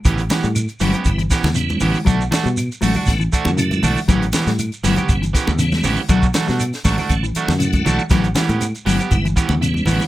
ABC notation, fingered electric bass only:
X:1
M:4/4
L:1/16
Q:1/4=119
K:Amix
V:1 name="Fingered electric bass" clef=bass
A,,,2 z A,,2 z G,,, z G,,,2 z E,,3 A,,, z | B,,,2 z B,,2 z A,,, z A,,,2 z F,,3 B,,, z | A,,,2 z A,,2 z G,,, z G,,,2 z E,,3 A,,, z | B,,,2 z B,,2 z A,,, z A,,,2 z F,,3 B,,, z |
A,,,2 z A,,2 z G,,, z G,,,2 z E,,3 A,,, z |]